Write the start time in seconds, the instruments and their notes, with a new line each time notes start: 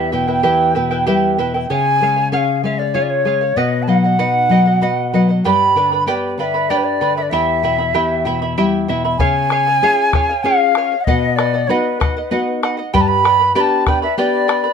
Already playing: nylon-string guitar E2, charango E4 G4 B4 E5 G5, quena E5
0.12 nylon-string guitar B2, charango E4 B4 E5 G5, quena G5
0.28 charango E4 B4 G5
0.43 nylon-string guitar E3, charango E4 G4 B4 E5 G5
0.75 nylon-string guitar B2, charango E4 B4 E5 G5
0.91 charango E4 B4 G5
1.07 nylon-string guitar G3, charango E4 G4 B4 E5 G5
1.38 nylon-string guitar B2, charango E4 B4 E5 G5
1.54 charango E4 B4 G5
1.70 nylon-string guitar C#3, charango G#4 C#5 F5, quena G#5
2.01 nylon-string guitar G#3, charango G#4 C#5 F5
2.16 charango C#5 F5
2.32 nylon-string guitar C#4, charango G#4 C#5 F5, quena F#5
2.37 quena F5
2.63 nylon-string guitar G#3, charango G#4 C#5 F5, quena E5
2.78 charango C#5 F5, quena D5
2.94 nylon-string guitar F4, charango G#4 C#5 F5, quena C#5
3.02 quena D5
3.10 quena C#5
3.25 nylon-string guitar G#3, charango G#4 C#5 F5
3.41 charango C#5 F5
3.56 nylon-string guitar B2, charango B4 D#5 F#5, quena D#5
3.83 quena A5
3.87 nylon-string guitar F#3, charango B4 D#5 F#5, quena F#5
4.04 charango D#5 F#5
4.19 nylon-string guitar D#4, charango B4 D#5 F#5
4.49 nylon-string guitar F#3, charango B4 D#5 F#5
4.66 charango D#5 F#5
4.81 nylon-string guitar F#4, charango B4 D#5 F#5
5.13 nylon-string guitar F#3, charango B4 D#5 F#5
5.29 charango D#5 F#5
5.44 nylon-string guitar G2, charango G4 B4 D5 G5 B5, quena B5
5.76 nylon-string guitar D3, charango B4 D5 G5 B5
5.92 charango B4 D5 B5
6.07 nylon-string guitar B3, charango G4 B4 D5 G5 B5, quena G5
6.38 nylon-string guitar D3, charango B4 D5 G5 B5, quena F5
6.43 quena E5
6.54 charango B4 D5 B5
6.70 nylon-string guitar D4, charango G4 B4 D5 G5 B5, quena D5
6.77 quena B4
6.84 quena D5
7.01 nylon-string guitar D3, charango B4 D5 G5 B5
7.16 charango B4 D5 B5, quena E5
7.23 quena D5
7.30 nylon-string guitar E2, charango E4 G4 E5 G5 B5, quena E5
7.63 nylon-string guitar B2, charango E4 E5 G5 B5
7.78 charango E4 E5 B5
7.94 nylon-string guitar E3, charango E4 G4 E5 G5 B5
8.25 nylon-string guitar B2, charango E4 E5 G5 B5
8.42 charango E4 E5 B5
8.57 nylon-string guitar G3, charango E4 G4 E5 G5 B5
8.88 nylon-string guitar B2, charango E4 E5 G5 B5
9.05 charango E4 E5 B5
9.18 nylon-string guitar C#3, charango G#4 C#5 F5, quena G#5, bombo rim, bombo low
9.50 charango G#4 C#5 F5, bombo rim
9.67 charango C#5 F5, bombo rim
9.82 nylon-string guitar C#4 F4 G#4, charango G#4 C#5 F5
10.13 charango G#4 C#5 F5, bombo rim, bombo low
10.29 charango C#5 F5
10.43 nylon-string guitar C#4 F4 G#4, charango G#4 C#5 F5, quena F5
10.75 charango G#4 C#5 F5, bombo rim
10.92 charango C#5 F5
11.00 quena F#5
11.04 nylon-string guitar B2, charango B4 D#5 F#5, quena D#5, bombo rim, bombo low
11.36 charango B4 D#5 F#5, quena D5, bombo rim
11.54 charango D#5 F#5, bombo rim
11.67 nylon-string guitar B3 D#4 F#4, charango B4 D#5 F#5, quena B4 C#5
12.00 charango B4 D#5 F#5, bombo rim, bombo low
12.17 charango D#5 F#5
12.31 nylon-string guitar B3 D#4 F#4, charango B4 D#5 F#5
12.63 charango B4 D#5 F#5, bombo rim
12.77 charango D#5 F#5
12.94 nylon-string guitar G2, charango G4 B4 D5 G5 B5, quena B5, bombo rim, bombo low
13.01 quena A5
13.08 quena B5
13.24 charango B4 D5 G5 B5, bombo rim
13.39 charango B4 D5 B5, bombo rim
13.55 nylon-string guitar B3 D4 G4, charango G4 B4 D5 G5 B5, quena B5
13.60 quena A5
13.87 charango B4 D5 G5 B5, quena G5, bombo rim, bombo low
14.02 charango B4 D5 B5, quena E5
14.17 nylon-string guitar B3 D4 G4, charango G4 B4 D5 G5 B5, quena D5
14.48 charango B4 D5 G5 B5, bombo rim
14.64 charango B4 D5 B5